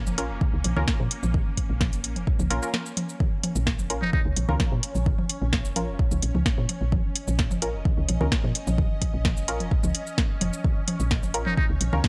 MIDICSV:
0, 0, Header, 1, 6, 480
1, 0, Start_track
1, 0, Key_signature, -5, "minor"
1, 0, Tempo, 465116
1, 1385, Time_signature, 4, 2, 24, 8
1, 12468, End_track
2, 0, Start_track
2, 0, Title_t, "Synth drone"
2, 0, Program_c, 0, 95
2, 0, Note_on_c, 0, 58, 85
2, 0, Note_on_c, 0, 61, 81
2, 3292, Note_off_c, 0, 61, 0
2, 3304, Note_on_c, 0, 73, 84
2, 3305, Note_on_c, 0, 61, 84
2, 3315, Note_off_c, 0, 58, 0
2, 7145, Note_on_c, 0, 75, 86
2, 7170, Note_off_c, 0, 73, 0
2, 10985, Note_on_c, 0, 73, 84
2, 11010, Note_off_c, 0, 75, 0
2, 12468, Note_off_c, 0, 61, 0
2, 12468, Note_off_c, 0, 73, 0
2, 12468, End_track
3, 0, Start_track
3, 0, Title_t, "Synth stab"
3, 0, Program_c, 1, 62
3, 185, Note_on_c, 1, 61, 79
3, 185, Note_on_c, 1, 65, 75
3, 185, Note_on_c, 1, 70, 90
3, 255, Note_off_c, 1, 61, 0
3, 255, Note_off_c, 1, 65, 0
3, 255, Note_off_c, 1, 70, 0
3, 790, Note_on_c, 1, 61, 90
3, 790, Note_on_c, 1, 65, 77
3, 790, Note_on_c, 1, 70, 103
3, 854, Note_off_c, 1, 61, 0
3, 854, Note_off_c, 1, 65, 0
3, 854, Note_off_c, 1, 70, 0
3, 2585, Note_on_c, 1, 61, 91
3, 2585, Note_on_c, 1, 65, 79
3, 2585, Note_on_c, 1, 70, 94
3, 2691, Note_off_c, 1, 61, 0
3, 2691, Note_off_c, 1, 65, 0
3, 2691, Note_off_c, 1, 70, 0
3, 2710, Note_on_c, 1, 61, 76
3, 2710, Note_on_c, 1, 65, 71
3, 2710, Note_on_c, 1, 70, 81
3, 2774, Note_off_c, 1, 61, 0
3, 2774, Note_off_c, 1, 65, 0
3, 2774, Note_off_c, 1, 70, 0
3, 4025, Note_on_c, 1, 61, 79
3, 4025, Note_on_c, 1, 65, 71
3, 4025, Note_on_c, 1, 70, 86
3, 4095, Note_off_c, 1, 61, 0
3, 4095, Note_off_c, 1, 65, 0
3, 4095, Note_off_c, 1, 70, 0
3, 4630, Note_on_c, 1, 61, 93
3, 4630, Note_on_c, 1, 65, 83
3, 4630, Note_on_c, 1, 70, 102
3, 4694, Note_off_c, 1, 61, 0
3, 4694, Note_off_c, 1, 65, 0
3, 4694, Note_off_c, 1, 70, 0
3, 5945, Note_on_c, 1, 61, 79
3, 5945, Note_on_c, 1, 65, 72
3, 5945, Note_on_c, 1, 70, 86
3, 6057, Note_off_c, 1, 61, 0
3, 6057, Note_off_c, 1, 65, 0
3, 6057, Note_off_c, 1, 70, 0
3, 7864, Note_on_c, 1, 61, 76
3, 7864, Note_on_c, 1, 65, 74
3, 7864, Note_on_c, 1, 70, 85
3, 7935, Note_off_c, 1, 61, 0
3, 7935, Note_off_c, 1, 65, 0
3, 7935, Note_off_c, 1, 70, 0
3, 8470, Note_on_c, 1, 61, 86
3, 8470, Note_on_c, 1, 65, 83
3, 8470, Note_on_c, 1, 70, 99
3, 8534, Note_off_c, 1, 61, 0
3, 8534, Note_off_c, 1, 65, 0
3, 8534, Note_off_c, 1, 70, 0
3, 9784, Note_on_c, 1, 61, 80
3, 9784, Note_on_c, 1, 65, 72
3, 9784, Note_on_c, 1, 70, 86
3, 9897, Note_off_c, 1, 61, 0
3, 9897, Note_off_c, 1, 65, 0
3, 9897, Note_off_c, 1, 70, 0
3, 11705, Note_on_c, 1, 61, 79
3, 11705, Note_on_c, 1, 65, 73
3, 11705, Note_on_c, 1, 70, 89
3, 11775, Note_off_c, 1, 61, 0
3, 11775, Note_off_c, 1, 65, 0
3, 11775, Note_off_c, 1, 70, 0
3, 12310, Note_on_c, 1, 61, 88
3, 12310, Note_on_c, 1, 65, 80
3, 12310, Note_on_c, 1, 70, 101
3, 12374, Note_off_c, 1, 61, 0
3, 12374, Note_off_c, 1, 65, 0
3, 12374, Note_off_c, 1, 70, 0
3, 12468, End_track
4, 0, Start_track
4, 0, Title_t, "Muted trumpet"
4, 0, Program_c, 2, 59
4, 4149, Note_on_c, 2, 63, 86
4, 4223, Note_off_c, 2, 63, 0
4, 4264, Note_on_c, 2, 63, 74
4, 4344, Note_off_c, 2, 63, 0
4, 11829, Note_on_c, 2, 63, 86
4, 11903, Note_off_c, 2, 63, 0
4, 11944, Note_on_c, 2, 63, 77
4, 12024, Note_off_c, 2, 63, 0
4, 12468, End_track
5, 0, Start_track
5, 0, Title_t, "FM bass"
5, 0, Program_c, 3, 39
5, 70, Note_on_c, 3, 29, 99
5, 184, Note_on_c, 3, 34, 82
5, 200, Note_off_c, 3, 29, 0
5, 310, Note_on_c, 3, 29, 81
5, 325, Note_off_c, 3, 34, 0
5, 393, Note_off_c, 3, 29, 0
5, 550, Note_on_c, 3, 37, 93
5, 634, Note_off_c, 3, 37, 0
5, 664, Note_on_c, 3, 34, 102
5, 756, Note_off_c, 3, 34, 0
5, 789, Note_on_c, 3, 37, 98
5, 873, Note_off_c, 3, 37, 0
5, 1029, Note_on_c, 3, 46, 84
5, 1113, Note_off_c, 3, 46, 0
5, 1270, Note_on_c, 3, 34, 94
5, 1442, Note_off_c, 3, 34, 0
5, 1750, Note_on_c, 3, 34, 103
5, 1990, Note_on_c, 3, 29, 98
5, 2005, Note_off_c, 3, 34, 0
5, 2104, Note_on_c, 3, 34, 84
5, 2120, Note_off_c, 3, 29, 0
5, 2229, Note_on_c, 3, 29, 84
5, 2245, Note_off_c, 3, 34, 0
5, 2313, Note_off_c, 3, 29, 0
5, 2470, Note_on_c, 3, 37, 94
5, 2553, Note_off_c, 3, 37, 0
5, 2585, Note_on_c, 3, 34, 97
5, 2676, Note_off_c, 3, 34, 0
5, 3669, Note_on_c, 3, 34, 101
5, 3910, Note_on_c, 3, 29, 100
5, 3925, Note_off_c, 3, 34, 0
5, 4025, Note_on_c, 3, 34, 85
5, 4040, Note_off_c, 3, 29, 0
5, 4150, Note_on_c, 3, 29, 86
5, 4165, Note_off_c, 3, 34, 0
5, 4233, Note_off_c, 3, 29, 0
5, 4390, Note_on_c, 3, 37, 97
5, 4474, Note_off_c, 3, 37, 0
5, 4504, Note_on_c, 3, 34, 98
5, 4596, Note_off_c, 3, 34, 0
5, 4630, Note_on_c, 3, 37, 97
5, 4713, Note_off_c, 3, 37, 0
5, 4869, Note_on_c, 3, 46, 88
5, 4953, Note_off_c, 3, 46, 0
5, 5109, Note_on_c, 3, 34, 92
5, 5281, Note_off_c, 3, 34, 0
5, 5590, Note_on_c, 3, 34, 99
5, 5830, Note_on_c, 3, 29, 93
5, 5845, Note_off_c, 3, 34, 0
5, 5944, Note_on_c, 3, 34, 83
5, 5960, Note_off_c, 3, 29, 0
5, 6070, Note_on_c, 3, 29, 81
5, 6085, Note_off_c, 3, 34, 0
5, 6153, Note_off_c, 3, 29, 0
5, 6310, Note_on_c, 3, 37, 104
5, 6393, Note_off_c, 3, 37, 0
5, 6424, Note_on_c, 3, 34, 106
5, 6516, Note_off_c, 3, 34, 0
5, 6549, Note_on_c, 3, 37, 98
5, 6633, Note_off_c, 3, 37, 0
5, 6789, Note_on_c, 3, 46, 87
5, 6873, Note_off_c, 3, 46, 0
5, 7029, Note_on_c, 3, 34, 94
5, 7201, Note_off_c, 3, 34, 0
5, 7509, Note_on_c, 3, 34, 100
5, 7750, Note_on_c, 3, 29, 98
5, 7765, Note_off_c, 3, 34, 0
5, 7864, Note_on_c, 3, 34, 81
5, 7880, Note_off_c, 3, 29, 0
5, 7989, Note_on_c, 3, 29, 88
5, 8005, Note_off_c, 3, 34, 0
5, 8073, Note_off_c, 3, 29, 0
5, 8230, Note_on_c, 3, 37, 95
5, 8313, Note_off_c, 3, 37, 0
5, 8345, Note_on_c, 3, 34, 103
5, 8436, Note_off_c, 3, 34, 0
5, 8470, Note_on_c, 3, 37, 92
5, 8553, Note_off_c, 3, 37, 0
5, 8710, Note_on_c, 3, 46, 88
5, 8793, Note_off_c, 3, 46, 0
5, 8950, Note_on_c, 3, 34, 95
5, 9122, Note_off_c, 3, 34, 0
5, 9430, Note_on_c, 3, 34, 99
5, 9670, Note_on_c, 3, 29, 93
5, 9685, Note_off_c, 3, 34, 0
5, 9785, Note_on_c, 3, 34, 87
5, 9800, Note_off_c, 3, 29, 0
5, 9911, Note_on_c, 3, 29, 81
5, 9926, Note_off_c, 3, 34, 0
5, 9994, Note_off_c, 3, 29, 0
5, 10150, Note_on_c, 3, 37, 98
5, 10233, Note_off_c, 3, 37, 0
5, 10745, Note_on_c, 3, 29, 91
5, 10836, Note_off_c, 3, 29, 0
5, 11350, Note_on_c, 3, 34, 96
5, 11590, Note_on_c, 3, 29, 99
5, 11605, Note_off_c, 3, 34, 0
5, 11704, Note_on_c, 3, 34, 87
5, 11720, Note_off_c, 3, 29, 0
5, 11829, Note_on_c, 3, 29, 90
5, 11845, Note_off_c, 3, 34, 0
5, 11913, Note_off_c, 3, 29, 0
5, 12069, Note_on_c, 3, 37, 93
5, 12153, Note_off_c, 3, 37, 0
5, 12184, Note_on_c, 3, 34, 101
5, 12276, Note_off_c, 3, 34, 0
5, 12309, Note_on_c, 3, 37, 97
5, 12393, Note_off_c, 3, 37, 0
5, 12468, End_track
6, 0, Start_track
6, 0, Title_t, "Drums"
6, 70, Note_on_c, 9, 48, 74
6, 70, Note_on_c, 9, 82, 33
6, 173, Note_off_c, 9, 48, 0
6, 173, Note_off_c, 9, 82, 0
6, 185, Note_on_c, 9, 42, 89
6, 288, Note_off_c, 9, 42, 0
6, 425, Note_on_c, 9, 36, 117
6, 425, Note_on_c, 9, 48, 40
6, 425, Note_on_c, 9, 64, 75
6, 528, Note_off_c, 9, 36, 0
6, 528, Note_off_c, 9, 48, 0
6, 528, Note_off_c, 9, 64, 0
6, 664, Note_on_c, 9, 42, 88
6, 664, Note_on_c, 9, 48, 74
6, 768, Note_off_c, 9, 42, 0
6, 768, Note_off_c, 9, 48, 0
6, 790, Note_on_c, 9, 64, 94
6, 893, Note_off_c, 9, 64, 0
6, 904, Note_on_c, 9, 38, 88
6, 905, Note_on_c, 9, 36, 118
6, 1007, Note_off_c, 9, 38, 0
6, 1008, Note_off_c, 9, 36, 0
6, 1030, Note_on_c, 9, 48, 43
6, 1133, Note_off_c, 9, 48, 0
6, 1145, Note_on_c, 9, 42, 94
6, 1248, Note_off_c, 9, 42, 0
6, 1269, Note_on_c, 9, 48, 77
6, 1270, Note_on_c, 9, 82, 30
6, 1373, Note_off_c, 9, 48, 0
6, 1373, Note_off_c, 9, 82, 0
6, 1385, Note_on_c, 9, 36, 111
6, 1385, Note_on_c, 9, 64, 82
6, 1488, Note_off_c, 9, 36, 0
6, 1488, Note_off_c, 9, 64, 0
6, 1625, Note_on_c, 9, 36, 58
6, 1625, Note_on_c, 9, 42, 90
6, 1625, Note_on_c, 9, 48, 44
6, 1728, Note_off_c, 9, 36, 0
6, 1728, Note_off_c, 9, 42, 0
6, 1728, Note_off_c, 9, 48, 0
6, 1865, Note_on_c, 9, 36, 118
6, 1865, Note_on_c, 9, 38, 96
6, 1865, Note_on_c, 9, 48, 74
6, 1968, Note_off_c, 9, 36, 0
6, 1968, Note_off_c, 9, 38, 0
6, 1968, Note_off_c, 9, 48, 0
6, 1991, Note_on_c, 9, 42, 33
6, 1991, Note_on_c, 9, 82, 32
6, 2094, Note_off_c, 9, 42, 0
6, 2094, Note_off_c, 9, 82, 0
6, 2105, Note_on_c, 9, 42, 86
6, 2208, Note_off_c, 9, 42, 0
6, 2230, Note_on_c, 9, 48, 44
6, 2231, Note_on_c, 9, 42, 35
6, 2333, Note_off_c, 9, 48, 0
6, 2334, Note_off_c, 9, 42, 0
6, 2345, Note_on_c, 9, 36, 114
6, 2448, Note_off_c, 9, 36, 0
6, 2470, Note_on_c, 9, 48, 78
6, 2471, Note_on_c, 9, 82, 34
6, 2573, Note_off_c, 9, 48, 0
6, 2574, Note_off_c, 9, 82, 0
6, 2585, Note_on_c, 9, 42, 89
6, 2688, Note_off_c, 9, 42, 0
6, 2710, Note_on_c, 9, 82, 31
6, 2813, Note_off_c, 9, 82, 0
6, 2825, Note_on_c, 9, 38, 95
6, 2825, Note_on_c, 9, 48, 47
6, 2928, Note_off_c, 9, 38, 0
6, 2928, Note_off_c, 9, 48, 0
6, 2951, Note_on_c, 9, 82, 31
6, 3054, Note_off_c, 9, 82, 0
6, 3065, Note_on_c, 9, 42, 89
6, 3065, Note_on_c, 9, 48, 77
6, 3168, Note_off_c, 9, 42, 0
6, 3168, Note_off_c, 9, 48, 0
6, 3191, Note_on_c, 9, 82, 29
6, 3294, Note_off_c, 9, 82, 0
6, 3305, Note_on_c, 9, 36, 119
6, 3305, Note_on_c, 9, 48, 44
6, 3305, Note_on_c, 9, 64, 86
6, 3408, Note_off_c, 9, 36, 0
6, 3408, Note_off_c, 9, 48, 0
6, 3408, Note_off_c, 9, 64, 0
6, 3545, Note_on_c, 9, 42, 93
6, 3545, Note_on_c, 9, 48, 78
6, 3648, Note_off_c, 9, 42, 0
6, 3648, Note_off_c, 9, 48, 0
6, 3670, Note_on_c, 9, 82, 32
6, 3773, Note_off_c, 9, 82, 0
6, 3785, Note_on_c, 9, 36, 110
6, 3785, Note_on_c, 9, 38, 98
6, 3888, Note_off_c, 9, 36, 0
6, 3888, Note_off_c, 9, 38, 0
6, 3910, Note_on_c, 9, 48, 45
6, 3910, Note_on_c, 9, 82, 30
6, 4013, Note_off_c, 9, 48, 0
6, 4013, Note_off_c, 9, 82, 0
6, 4025, Note_on_c, 9, 42, 97
6, 4128, Note_off_c, 9, 42, 0
6, 4150, Note_on_c, 9, 48, 79
6, 4253, Note_off_c, 9, 48, 0
6, 4265, Note_on_c, 9, 36, 121
6, 4265, Note_on_c, 9, 64, 85
6, 4368, Note_off_c, 9, 36, 0
6, 4368, Note_off_c, 9, 64, 0
6, 4505, Note_on_c, 9, 42, 93
6, 4505, Note_on_c, 9, 48, 45
6, 4608, Note_off_c, 9, 42, 0
6, 4608, Note_off_c, 9, 48, 0
6, 4631, Note_on_c, 9, 64, 96
6, 4734, Note_off_c, 9, 64, 0
6, 4745, Note_on_c, 9, 36, 124
6, 4745, Note_on_c, 9, 38, 98
6, 4745, Note_on_c, 9, 48, 82
6, 4848, Note_off_c, 9, 36, 0
6, 4848, Note_off_c, 9, 38, 0
6, 4848, Note_off_c, 9, 48, 0
6, 4985, Note_on_c, 9, 42, 97
6, 5088, Note_off_c, 9, 42, 0
6, 5110, Note_on_c, 9, 82, 29
6, 5111, Note_on_c, 9, 48, 45
6, 5213, Note_off_c, 9, 82, 0
6, 5214, Note_off_c, 9, 48, 0
6, 5225, Note_on_c, 9, 36, 121
6, 5225, Note_on_c, 9, 64, 85
6, 5328, Note_off_c, 9, 36, 0
6, 5328, Note_off_c, 9, 64, 0
6, 5350, Note_on_c, 9, 48, 78
6, 5453, Note_off_c, 9, 48, 0
6, 5464, Note_on_c, 9, 42, 95
6, 5567, Note_off_c, 9, 42, 0
6, 5704, Note_on_c, 9, 36, 118
6, 5704, Note_on_c, 9, 38, 99
6, 5705, Note_on_c, 9, 48, 47
6, 5807, Note_off_c, 9, 38, 0
6, 5808, Note_off_c, 9, 36, 0
6, 5808, Note_off_c, 9, 48, 0
6, 5830, Note_on_c, 9, 82, 33
6, 5933, Note_off_c, 9, 82, 0
6, 5944, Note_on_c, 9, 42, 94
6, 5945, Note_on_c, 9, 48, 80
6, 6047, Note_off_c, 9, 42, 0
6, 6048, Note_off_c, 9, 48, 0
6, 6184, Note_on_c, 9, 36, 126
6, 6288, Note_off_c, 9, 36, 0
6, 6310, Note_on_c, 9, 48, 49
6, 6310, Note_on_c, 9, 82, 33
6, 6413, Note_off_c, 9, 48, 0
6, 6413, Note_off_c, 9, 82, 0
6, 6424, Note_on_c, 9, 42, 93
6, 6527, Note_off_c, 9, 42, 0
6, 6550, Note_on_c, 9, 48, 80
6, 6653, Note_off_c, 9, 48, 0
6, 6664, Note_on_c, 9, 36, 127
6, 6664, Note_on_c, 9, 38, 96
6, 6768, Note_off_c, 9, 36, 0
6, 6768, Note_off_c, 9, 38, 0
6, 6904, Note_on_c, 9, 42, 94
6, 6905, Note_on_c, 9, 48, 49
6, 7007, Note_off_c, 9, 42, 0
6, 7008, Note_off_c, 9, 48, 0
6, 7144, Note_on_c, 9, 36, 123
6, 7145, Note_on_c, 9, 48, 86
6, 7145, Note_on_c, 9, 64, 82
6, 7248, Note_off_c, 9, 36, 0
6, 7248, Note_off_c, 9, 48, 0
6, 7248, Note_off_c, 9, 64, 0
6, 7384, Note_on_c, 9, 42, 98
6, 7487, Note_off_c, 9, 42, 0
6, 7509, Note_on_c, 9, 82, 30
6, 7510, Note_on_c, 9, 48, 46
6, 7613, Note_off_c, 9, 48, 0
6, 7613, Note_off_c, 9, 82, 0
6, 7624, Note_on_c, 9, 36, 127
6, 7624, Note_on_c, 9, 38, 97
6, 7727, Note_off_c, 9, 38, 0
6, 7728, Note_off_c, 9, 36, 0
6, 7749, Note_on_c, 9, 82, 30
6, 7750, Note_on_c, 9, 48, 82
6, 7853, Note_off_c, 9, 48, 0
6, 7853, Note_off_c, 9, 82, 0
6, 7864, Note_on_c, 9, 42, 101
6, 7967, Note_off_c, 9, 42, 0
6, 8104, Note_on_c, 9, 36, 127
6, 8104, Note_on_c, 9, 48, 48
6, 8104, Note_on_c, 9, 64, 79
6, 8208, Note_off_c, 9, 36, 0
6, 8208, Note_off_c, 9, 48, 0
6, 8208, Note_off_c, 9, 64, 0
6, 8344, Note_on_c, 9, 42, 98
6, 8345, Note_on_c, 9, 48, 78
6, 8448, Note_off_c, 9, 42, 0
6, 8448, Note_off_c, 9, 48, 0
6, 8470, Note_on_c, 9, 64, 96
6, 8573, Note_off_c, 9, 64, 0
6, 8584, Note_on_c, 9, 36, 127
6, 8584, Note_on_c, 9, 38, 93
6, 8688, Note_off_c, 9, 36, 0
6, 8688, Note_off_c, 9, 38, 0
6, 8709, Note_on_c, 9, 48, 45
6, 8813, Note_off_c, 9, 48, 0
6, 8824, Note_on_c, 9, 42, 97
6, 8928, Note_off_c, 9, 42, 0
6, 8950, Note_on_c, 9, 48, 87
6, 8950, Note_on_c, 9, 82, 30
6, 9053, Note_off_c, 9, 48, 0
6, 9053, Note_off_c, 9, 82, 0
6, 9064, Note_on_c, 9, 36, 125
6, 9064, Note_on_c, 9, 64, 77
6, 9167, Note_off_c, 9, 64, 0
6, 9168, Note_off_c, 9, 36, 0
6, 9304, Note_on_c, 9, 36, 64
6, 9304, Note_on_c, 9, 42, 93
6, 9305, Note_on_c, 9, 48, 49
6, 9408, Note_off_c, 9, 36, 0
6, 9408, Note_off_c, 9, 42, 0
6, 9408, Note_off_c, 9, 48, 0
6, 9544, Note_on_c, 9, 36, 125
6, 9545, Note_on_c, 9, 38, 93
6, 9545, Note_on_c, 9, 48, 80
6, 9648, Note_off_c, 9, 36, 0
6, 9648, Note_off_c, 9, 38, 0
6, 9648, Note_off_c, 9, 48, 0
6, 9670, Note_on_c, 9, 82, 28
6, 9774, Note_off_c, 9, 82, 0
6, 9785, Note_on_c, 9, 42, 101
6, 9888, Note_off_c, 9, 42, 0
6, 9910, Note_on_c, 9, 42, 38
6, 9910, Note_on_c, 9, 48, 48
6, 10013, Note_off_c, 9, 42, 0
6, 10013, Note_off_c, 9, 48, 0
6, 10025, Note_on_c, 9, 36, 126
6, 10128, Note_off_c, 9, 36, 0
6, 10150, Note_on_c, 9, 48, 81
6, 10150, Note_on_c, 9, 82, 30
6, 10253, Note_off_c, 9, 48, 0
6, 10253, Note_off_c, 9, 82, 0
6, 10264, Note_on_c, 9, 42, 92
6, 10368, Note_off_c, 9, 42, 0
6, 10390, Note_on_c, 9, 82, 28
6, 10493, Note_off_c, 9, 82, 0
6, 10505, Note_on_c, 9, 36, 124
6, 10505, Note_on_c, 9, 38, 94
6, 10505, Note_on_c, 9, 48, 47
6, 10608, Note_off_c, 9, 36, 0
6, 10608, Note_off_c, 9, 38, 0
6, 10608, Note_off_c, 9, 48, 0
6, 10745, Note_on_c, 9, 42, 98
6, 10745, Note_on_c, 9, 48, 86
6, 10848, Note_off_c, 9, 42, 0
6, 10848, Note_off_c, 9, 48, 0
6, 10870, Note_on_c, 9, 82, 28
6, 10973, Note_off_c, 9, 82, 0
6, 10985, Note_on_c, 9, 36, 121
6, 10985, Note_on_c, 9, 48, 45
6, 10985, Note_on_c, 9, 64, 78
6, 11088, Note_off_c, 9, 36, 0
6, 11088, Note_off_c, 9, 48, 0
6, 11088, Note_off_c, 9, 64, 0
6, 11224, Note_on_c, 9, 42, 94
6, 11225, Note_on_c, 9, 48, 82
6, 11327, Note_off_c, 9, 42, 0
6, 11328, Note_off_c, 9, 48, 0
6, 11350, Note_on_c, 9, 82, 27
6, 11453, Note_off_c, 9, 82, 0
6, 11464, Note_on_c, 9, 38, 89
6, 11465, Note_on_c, 9, 36, 112
6, 11568, Note_off_c, 9, 36, 0
6, 11568, Note_off_c, 9, 38, 0
6, 11590, Note_on_c, 9, 48, 44
6, 11590, Note_on_c, 9, 82, 30
6, 11693, Note_off_c, 9, 48, 0
6, 11693, Note_off_c, 9, 82, 0
6, 11704, Note_on_c, 9, 42, 95
6, 11808, Note_off_c, 9, 42, 0
6, 11830, Note_on_c, 9, 48, 82
6, 11934, Note_off_c, 9, 48, 0
6, 11945, Note_on_c, 9, 36, 124
6, 11945, Note_on_c, 9, 64, 73
6, 12048, Note_off_c, 9, 36, 0
6, 12048, Note_off_c, 9, 64, 0
6, 12185, Note_on_c, 9, 42, 93
6, 12186, Note_on_c, 9, 48, 45
6, 12288, Note_off_c, 9, 42, 0
6, 12289, Note_off_c, 9, 48, 0
6, 12310, Note_on_c, 9, 64, 89
6, 12413, Note_off_c, 9, 64, 0
6, 12425, Note_on_c, 9, 36, 127
6, 12425, Note_on_c, 9, 38, 92
6, 12425, Note_on_c, 9, 48, 78
6, 12468, Note_off_c, 9, 36, 0
6, 12468, Note_off_c, 9, 38, 0
6, 12468, Note_off_c, 9, 48, 0
6, 12468, End_track
0, 0, End_of_file